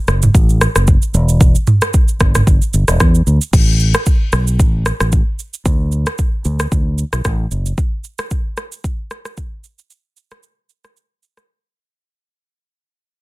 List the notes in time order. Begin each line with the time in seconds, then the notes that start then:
0.08 F#1, cross-stick, shaker
0.22 mid tom, shaker
0.35 A1, kick, shaker
0.49 shaker
0.61 cross-stick, shaker
0.76 F#1, cross-stick, shaker
0.87 kick, shaker
1.02 shaker
1.14 E1, shaker
1.29 shaker
1.41 kick, shaker
1.55 shaker
1.67 mid tom, shaker
1.82 cross-stick, shaker
1.94 kick, shaker
2.08 shaker
2.20 G1, kick, cross-stick, shaker
2.35 cross-stick, mid tom, shaker
2.47 G1, kick, shaker
2.62 shaker
2.74 G1, shaker
2.88 E1, cross-stick, shaker
3.00 E2, kick, cross-stick, shaker
3.15 shaker
3.27 D2, shaker
3.42 shaker
3.53 A1, kick, crash, shaker
3.80 shaker
3.94 cross-stick, shaker
4.06 kick, shaker
4.32 B1, cross-stick, shaker
4.47 shaker
4.60 A1, kick, shaker
4.86 cross-stick, shaker
5.00 A1, cross-stick, shaker
5.12 kick, shaker
5.39 shaker
5.54 shaker
5.66 D2, kick, shaker
5.92 shaker
6.07 cross-stick, shaker
6.18 kick, shaker
6.45 D2, shaker
6.60 cross-stick, shaker
6.72 D2, kick, shaker
6.98 shaker
7.13 B1, cross-stick, shaker
7.25 A1, kick, cross-stick, shaker
7.51 F#1, shaker
7.66 shaker
7.78 kick, shaker
8.04 shaker
8.19 cross-stick, shaker
8.31 kick, shaker
8.57 cross-stick, shaker
8.72 shaker
8.84 kick, shaker
9.11 cross-stick, shaker
9.25 cross-stick, shaker
9.37 kick, shaker
9.64 shaker
9.79 shaker
9.90 shaker
10.17 shaker
10.31 cross-stick, shaker
10.43 shaker
10.69 shaker
10.84 cross-stick, shaker
10.97 shaker
11.23 shaker
11.37 cross-stick, shaker